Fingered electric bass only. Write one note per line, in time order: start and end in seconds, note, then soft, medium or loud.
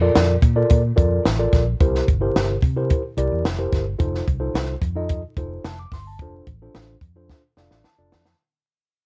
0.16 0.36 F2 loud
0.42 0.62 A#2 loud
0.71 0.90 A#2 loud
0.98 1.18 F2 medium
1.26 1.46 A1 medium
1.53 1.73 A#1 medium
1.80 2.00 C2 loud
2.08 2.28 G1 medium
2.35 2.55 G1 medium
2.62 2.93 C3 medium
3.17 3.27 C2 medium
3.32 3.42 E2 medium
3.45 3.65 F1 medium
3.73 3.93 G1 loud
4.00 4.20 F1 loud
4.28 4.47 C2 loud
4.54 4.74 C2 loud
4.82 5.22 F2 loud
5.37 5.57 F1 loud
5.64 5.84 F1 loud
5.91 6.19 G1 medium
6.19 6.40 F1 loud
6.47 6.67 A1 medium
6.74 6.94 A1 medium
7.02 7.32 F2 medium
7.57 7.67 F1 medium
7.71 7.81 A1 medium
7.98 8.14 F1 medium
8.13 8.33 F2 medium